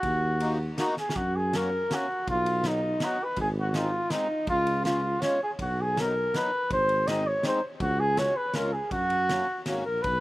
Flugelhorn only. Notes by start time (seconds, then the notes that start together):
Already playing: F#4
0.99 G#4
1.16 F#4
1.36 G#4
1.56 A#4
1.94 F#4
2.30 F4
2.67 D#4
3.04 F#4
3.24 B4
3.41 G#4
3.60 F#4
3.69 F#4
3.76 F4
4.11 D#4
4.49 F4
4.85 F4
5.21 C#5
5.43 G#4
5.62 F#4
5.81 G#4
6.00 A#4
6.37 B4
6.72 C5
7.07 D#5
7.27 C#5
7.47 C5
7.82 F#4
8.00 G#4
8.18 C#5
8.37 B4
8.56 A#4
8.73 G#4
8.92 F#4
9.86 A#4
10.02 B4